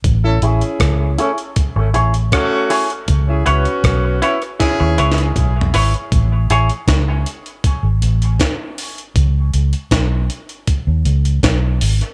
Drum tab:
HH |x-----x--x--x-----x--x--x-----x--x--x-----o--x--|x-----x--x--x-----x--x--x-----x--x--x-----o--x--|x-----x--x--x-----x--x--x-----x--x--x-----o--x--|x-----x--x--x-----x--x--x-----x--x--x-----o--x--|
SD |------------r-----------------------r-----------|------------r-----------o-------o---------------|------------o-----------------------o-----------|------------o-----------------------o-----------|
T2 |------------------------------------------------|------------------------------------o-----------|------------------------------------------------|------------------------------------------------|
FT |------------------------------------------------|----------------------------------------o-------|------------------------------------------------|------------------------------------------------|
BD |o-----------o-----------o-----------o-----------|o-----------o-----------o-----------o-----------|o-----------o-----------o-----------o-----------|o-----------o-----------o-----------o-----------|